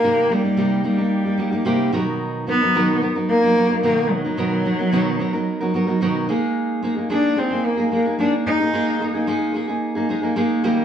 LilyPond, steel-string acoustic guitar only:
\new Staff \with { instrumentName = "Steel-string acoustic guitar" } { \time 4/4 \key aes \lydian \tempo 4 = 110 <c g bes ees' g'>8 <g bes ees' g'>16 <bes ees' g'>16 <c g bes ees' g'>8 <g bes ees' g'>16 <bes ees' g'>8 <bes ees' g'>16 <g bes ees' g'>16 <bes ees' g'>16 <c g bes ees' g'>8 <b, dis fis b dis' ais'>8~ | <b, dis fis b dis' ais'>8 <fis b dis' ais'>16 <fis b dis' ais'>16 <b, dis fis b dis' ais'>8 <fis b dis' ais'>16 <fis b dis' ais'>8 <fis b dis' ais'>16 <fis b dis' ais'>16 <fis b dis' ais'>16 <b, dis fis b dis' ais'>8. <fis b dis' ais'>16 | <b, dis fis b dis' ais'>8 <fis b dis' ais'>16 <fis b dis' ais'>16 <b, dis fis b dis' ais'>8 <fis b dis' ais'>16 <fis b dis' ais'>8 <fis b dis' ais'>16 <fis b dis' ais'>16 <fis b dis' ais'>16 <b, dis fis b dis' ais'>8 <aes bes ees' aes'>8~ | <aes bes ees' aes'>8 <aes bes ees' aes'>16 <bes ees' aes'>16 <aes bes ees' aes'>8 <aes bes ees' aes'>16 <bes ees' aes'>8 <bes ees' aes'>16 <aes bes ees' aes'>16 <bes ees' aes'>16 <aes bes ees' aes'>8. <bes ees' aes'>16 |
<aes bes ees' aes'>8 <aes bes ees' aes'>16 <bes ees' aes'>16 <aes bes ees' aes'>8 <aes bes ees' aes'>16 <bes ees' aes'>8 <bes ees' aes'>16 <aes bes ees' aes'>16 <bes ees' aes'>16 <aes bes ees' aes'>8 <ees g bes ees' g'>8 | }